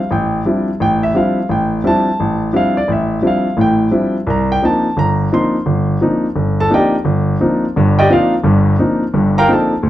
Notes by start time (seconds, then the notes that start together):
0.11 A1 G5
0.45 F3 G3 C4 D4 E4
0.80 A1 G5
1.03 E5
1.14 F3 G3 C4 D4 E4 F5
1.49 A1 G5
1.84 F3 G3 C4 D4 E4 A5
2.20 A1
2.53 F3 G3 C4 D4 E4 F5
2.77 D5
2.88 A1 E5
3.22 F3 G3 C4 D4 E4
3.27 F5
3.57 A1 A2
3.61 G5
3.91 F3 G3 C4 D4 E4
4.27 C2 A#5
4.52 G5
4.62 F3 A#3 C4 D4 D#4 A5
4.97 G1 A#5
5.32 F3 A#3 C4 D4 D#4 C6
5.66 G1
6.01 F3 A#3 C4 D4 D#4
6.36 G1
6.60 A4 A5
6.70 F3 A#3 C4 D4 D#4
6.74 G4 D5 D#5 G5
7.05 G1
7.40 F3 A#3 C4 D4 D#4
7.76 G1 G2
7.99 G4 D5 D#5 G5
8.10 F3 A#3 C4 D4 D#4 F4 C5 D5 F5
8.44 G1 G2
8.79 F3 A#3 C4 D4 D#4
9.14 G1 G2
9.38 A#4 F5 G5 A#5
9.48 F3 A#3 C4 D4 D#4
9.53 A4 A5
9.83 D2